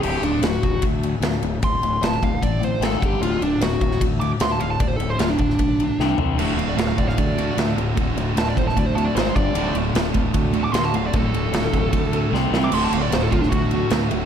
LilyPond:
<<
  \new Staff \with { instrumentName = "Lead electric guitar" } { \time 4/4 \key d \mixolydian \tempo 4 = 151 g'8 d'8 fis'4 r2 | c'''4 a''8 f''8 d''8 c''8 a'8 g'8 | f'8 d'8 fis'4 r8 d'''16 r16 c'''16 a''16 f''16 a''16 | d''16 c''16 a'16 c''16 f'16 d'16 d'2 r8 |
r8 f''16 d''16 f''16 f''16 d''16 f''16 d''4 r4 | r4 a''16 d''16 c''16 a''16 d''16 c''16 a''16 d''16 c''8 d''8~ | d''8 r2 r16 d'''16 c'''16 a''16 f''16 d''16 | a'2. r8. d'''16 |
c'''16 a''16 f''16 d''16 c''16 a'16 f'16 d'16 fis'4 r4 | }
  \new Staff \with { instrumentName = "Overdriven electric guitar" } { \clef bass \time 4/4 \key d \mixolydian r1 | r1 | r1 | r1 |
<d, a, d a fis'>2~ <d, a, d a fis'>8 <d, a, d a fis'>8 <d, a, d a fis'>4 | <d, a, d a fis'>2~ <d, a, d a fis'>8 <d, a, d a fis'>8 r4 | <d, a, d a fis'>2~ <d, a, d a fis'>8 <d, a, d a fis'>8 <d, a, d a fis'>4 | <d, a, d a fis'>2~ <d, a, d a fis'>8 <d, a, d a fis'>8 r4 |
<d, a, d a fis'>2~ <d, a, d a fis'>8 <d, a, d a fis'>8 <d, a, d a fis'>4 | }
  \new Staff \with { instrumentName = "Distorted electric guitar" } { \clef bass \time 4/4 \key d \mixolydian r1 | r1 | r1 | r1 |
<d, a, d>8 <d, a,>8 <d, a,>8 <d, a,>8 <d, a,>8 <d, a,>8 <d, a,>8 <d, a,>8 | <d, a,>8 <d, a,>8 <d, a,>8 <d, a,>8 <d, a,>8 <d, a,>8 <gis, dis gis>8 <g, d g>8 | <d, a, d>8 <d, a,>8 <d, a,>8 <d, a,>8 <d, a,>8 <d, a,>8 <d, a,>8 <d, a,>8 | <d, a,>8 <d, a,>8 <d, a,>8 <d, a,>8 <d, a,>8 <d, a,>8 <c g c'>8 <c g c'>8 |
<d, a, d>8 <d, a,>8 <d, a,>8 <d, a,>8 <d, a,>8 <d, a,>8 <d, a,>8 <d, a,>8 | }
  \new Staff \with { instrumentName = "Overdriven electric guitar" } { \clef bass \time 4/4 \key d \mixolydian <d, a, d>8 <d, a,>8 <d, a,>8 <d, a,>8 <d, a,>8 <d, a,>8 <d, a,>8 <d, a,>8 | <d, a,>8 <d, a,>8 <d, a,>8 <d, a,>8 <d, a,>8 <d, a,>8 <gis, dis gis>8 <g, d g>8 | <d, a, d>8 <d, a,>8 <d, a,>8 <d, a,>8 <d, a,>8 <d, a,>8 <d, a,>8 <d, a,>8 | <d, a,>8 <d, a,>8 <d, a,>8 <d, a,>8 <d, a,>8 <d, a,>8 <c g c'>8 <c g c'>8 |
<d, a, d>8 <d, a,>8 <d, a,>8 <d, a,>8 <d, a,>8 <d, a,>8 <d, a,>8 <d, a,>8 | <d, a,>8 <d, a,>8 <d, a,>8 <d, a,>8 <d, a,>8 <d, a,>8 <gis, dis gis>8 <g, d g>8 | <d, a, d>8 <d, a,>8 <d, a,>8 <d, a,>8 <d, a,>8 <d, a,>8 <d, a,>8 <d, a,>8 | <d, a,>8 <d, a,>8 <d, a,>8 <d, a,>8 <d, a,>8 <d, a,>8 <c g c'>8 <c g c'>8 |
<d, a, d>8 <d, a,>8 <d, a,>8 <d, a,>8 <d, a,>8 <d, a,>8 <d, a,>8 <d, a,>8 | }
  \new Staff \with { instrumentName = "Fingered electric bass" } { \clef bass \time 4/4 \key d \mixolydian d,,8 d,,8 d,,8 d,,8 d,4 d,8 d,,8 | d,,8 d,,8 d,,8 d,,8 a,,4 gis,,8 g,,8 | d,,8 d,,8 d,,8 d,,8 d,4 d,8 d,,8 | d,,8 d,,8 d,,8 d,,8 b,,4 c,8 c,8 |
d,,8 d,,8 d,,8 d,,8 d,4 d,8 d,,8 | d,,8 d,,8 d,,8 d,,8 d,4 gis,,8 g,,8 | d,,8 d,,8 d,,8 d,,8 d,4 d,8 d,,8 | d,,8 d,,8 d,,8 d,,8 d,4 c,8 c,8 |
d,,8 d,,8 d,,8 d,,8 d,4 d,8 d,,8 | }
  \new DrumStaff \with { instrumentName = "Drums" } \drummode { \time 4/4 cymc8 cymr8 <cymr sn>8 <bd cymr>8 <bd cymr>8 cymr8 <cymr sn>8 cymr8 | <bd cymr>8 cymr8 <cymr sn>8 <bd cymr>8 <bd cymr>8 cymr8 <cymr sn>8 <bd cymr>8 | cymr8 cymr8 <cymr sn>8 <bd cymr>16 sn16 <bd cymr>8 cymr8 <cymr sn>8 cymr8 | <bd cymr>8 cymr8 <cymr sn>8 <bd cymr>16 sn16 <bd cymr>8 cymr8 sn8 tomfh8 |
cymc8 cymr8 <cymr sn>8 <bd cymr>16 sn16 <bd cymr>8 cymr8 <cymr sn>8 cymr8 | <bd cymr>8 cymr8 <cymr sn>8 <bd cymr>16 sn16 <bd cymr>8 cymr8 <cymr sn>8 <bd cymr>8 | cymr8 cymr8 <cymr sn>8 <bd cymr>8 <bd cymr>8 cymr8 <cymr sn>8 cymr8 | <bd cymr>8 cymr8 <cymr sn>8 <bd cymr>8 <bd cymr>8 cymr8 sn8 sn8 |
cymc8 cymr8 <cymr sn>8 <bd cymr>16 sn16 <bd cymr>8 cymr8 <cymr sn>8 cymr8 | }
>>